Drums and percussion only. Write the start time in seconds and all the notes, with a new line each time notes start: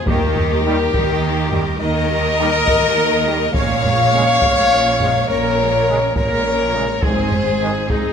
0.07 taiko
0.36 taiko low
0.94 taiko
1.52 taiko low
2.68 taiko
3.54 taiko
3.84 taiko low
4.42 taiko
5.00 taiko low
6.16 taiko
7.03 taiko
7.32 taiko low
7.90 taiko